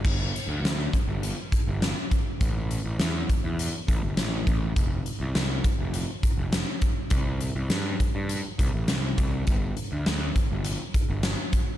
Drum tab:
CC |x-------|--------|--------|--------|
HH |-xxxxxxx|xxxxxxxx|xxxxxxxx|xxxxxxxx|
SD |--o---o-|--o---o-|--o---o-|--o---o-|
BD |o--o-o-o|o--o-o-o|o--o-o-o|o--o-o-o|

CC |--------|
HH |xxxxxxxx|
SD |--o---o-|
BD |o--o-o-o|